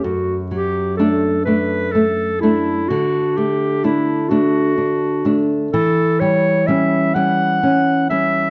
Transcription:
<<
  \new Staff \with { instrumentName = "Clarinet" } { \time 6/8 \key d \major \tempo 4. = 42 fis'8 g'8 a'8 b'8 a'8 e'8 | fis'8 g'8 e'8 fis'4 r8 | a'8 cis''8 e''8 fis''4 e''8 | }
  \new Staff \with { instrumentName = "Nylon-string guitar" } { \time 6/8 \key d \major fis,8 fis8 <a d'>8 <a d'>8 a8 <a d'>8 | d8 a8 <a d'>8 <a d'>8 d'8 <a d'>8 | e8 g8 <g cis'>8 <g cis'>8 cis'8 <g cis'>8 | }
>>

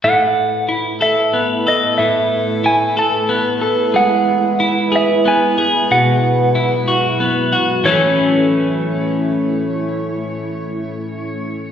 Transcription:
<<
  \new Staff \with { instrumentName = "Electric slide guitar" } { \time 6/8 \key a \major \tempo 4. = 61 fis''4 r8 e''4 dis''8 | e''4 gis''8 a''4 r8 | fis''4. e''8 gis''4 | fis''2 r4 |
cis''2.~ | cis''2. | }
  \new Staff \with { instrumentName = "Clean electric guitar" } { \time 6/8 \key a \major a,4 e'8 a'8 b8 a'8 | a,4 e'8 a'8 b8 a'8 | gis4 e'8 gis'8 b8 gis'8 | b,4 e'8 fis'8 b8 fis'8 |
<a, e a cis' a'>2.~ | <a, e a cis' a'>2. | }
  \new Staff \with { instrumentName = "Ambient pad" } { \time 6/8 \key a \major << { <e' b'>2.~ | <e' b'>2.~ | <e' b'>2.~ | <e' b'>2. |
<a e' cis''>2.~ | <a e' cis''>2. | } \\ { a2.~ | a2. | gis2. | fis2. |
r2. | r2. | } >> }
>>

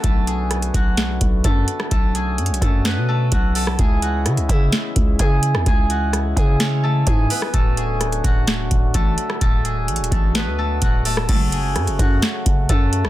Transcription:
<<
  \new Staff \with { instrumentName = "Synth bell" } { \time 4/4 \key fis \minor \tempo 4 = 128 r1 | r1 | r1 | r1 |
r1 | r1 | a''1 | }
  \new Staff \with { instrumentName = "Guzheng" } { \time 4/4 \key fis \minor <a a'>8 <gis' gis''>4 <fis' fis''>4. <a a'>4 | <a a'>8 <gis' gis''>4 <a a'>8 <b b'>8 <a a'>8 <fis' fis''>8 <a a'>8 | <gis' gis''>8 <fis' fis''>4 <e' e''>4. <gis' gis''>4 | <gis' gis''>8 <fis' fis''>4 <gis' gis''>8 <cis' cis''>8 <a a'>8 <gis' gis''>8 <b b'>8 |
<a a'>8 <gis' gis''>4 <fis' fis''>4. <a a'>4 | <a a'>8 <gis' gis''>4 <a a'>8 <b b'>8 <a a'>8 <fis' fis''>8 <a a'>8 | <a a'>8 <gis' gis''>4 <fis' fis''>4. <a a'>4 | }
  \new Staff \with { instrumentName = "Accordion" } { \clef bass \time 4/4 \key fis \minor << { <d a fis'>1~ | <d a fis'>1 | <cis e e'>1~ | <cis e e'>1 |
<d fis fis'>1~ | <d fis fis'>1 | <cis fis fis'>1 | } \\ { b1 | cis'1 | gis1~ | gis1 |
a1 | gis1 | a1 | } >> }
  \new Staff \with { instrumentName = "String section" } { \clef bass \time 4/4 \key fis \minor r1 | r1 | r1 | r1 |
r1 | r1 | <cis, a, fis>8 r2. r8 | }
  \new Staff \with { instrumentName = "808-style bass" } { \clef bass \time 4/4 \key fis \minor b,,4. b,,4 b,,8 fis,8 r8 | b,,4 fis,16 b,,16 fis,8. b,8. b,,4 | cis,4 cis16 cis,16 cis8 r8 cis,8 cis8. e,16 | cis,4. cis4. gis,8 r8 |
d,,4. d,,4 d,,8 a,,8 r8 | d,,4 a,,16 d,,16 a,,8. d,8. d,,4 | fis,,4 fis,16 fis,,16 fis,8 r8 fis,,8 fis,8. a,,16 | }
  \new DrumStaff \with { instrumentName = "Drums" } \drummode { \time 4/4 <hh bd>8 hh8 <hh ss>16 hh16 <hh bd>8 <hh sn>8 <hh bd>8 <hh bd>8 hh16 ss16 | <hh bd>8 hh8 \tuplet 3/2 { hh16 hh16 hh16 <hh bd>16 r16 r16 } <hh sn>4 <hh bd>8 hho16 ss16 | <hh bd>8 hh8 <hh ss>16 hh16 <hh bd>8 <hh sn>8 <hh bd>8 <hh bd>8 hh16 ss16 | <hh bd>8 hh8 <hh ss>8 <hh bd>8 <hh sn>4 <hh bd>8 hho16 ss16 |
<hh bd>8 hh8 <hh ss>16 hh16 <hh bd>8 <hh sn>8 <hh bd>8 <hh bd>8 hh16 ss16 | <hh bd>8 hh8 \tuplet 3/2 { hh16 hh16 hh16 <hh bd>16 r16 r16 } <hh sn>4 <hh bd>8 hho16 ss16 | <cymc hh bd>8 hh8 <hh ss>16 hh16 <hh bd>8 <hh sn>8 <hh bd>8 <hh bd>8 hh16 ss16 | }
>>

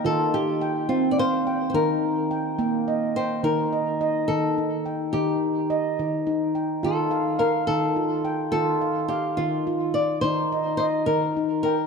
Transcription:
<<
  \new Staff \with { instrumentName = "Nylon-string guitar" } { \time 6/8 \key ees \lydian \tempo 4. = 71 a'8 g'4 f'16. d''32 c''8.~ c''32 c''32 | bes'2~ bes'8 c''8 | bes'4. a'4. | g'2~ g'8 r8 |
a'4 bes'8 a'4. | a'4 g'8 f'4 d''8 | c''4 c''8 bes'4 bes'8 | }
  \new Staff \with { instrumentName = "Handpan" } { \time 6/8 \key ees \lydian << { g''8 r4 g''4 g''8~ | g''8 r4 g''4 g''8~ | g''8 ees''4. r8 g''8~ | g''4 r4. g''8~ |
g''8 f''4. r8 g''8~ | g''8 f''4. r4 | r8 ees''4. r8 g''8 | } \\ { f'4 g''4 f''4 | ees'4 g''4 ees''4 | ees'4 ees''4 ees'4 | ees'4 ees''4 ees'4 |
f'4 f''4 f'4 | f'4 f''4 f'4 | ees'4 ees''4 ees'4 | } >> }
  \new Staff \with { instrumentName = "Handpan" } { \clef bass \time 6/8 \key ees \lydian ees4. c'4. | ees4. bes4. | ees4. ees4. | ees4. ees4. |
ees4. ees4. | ees4. ees4. | ees4. ees4. | }
>>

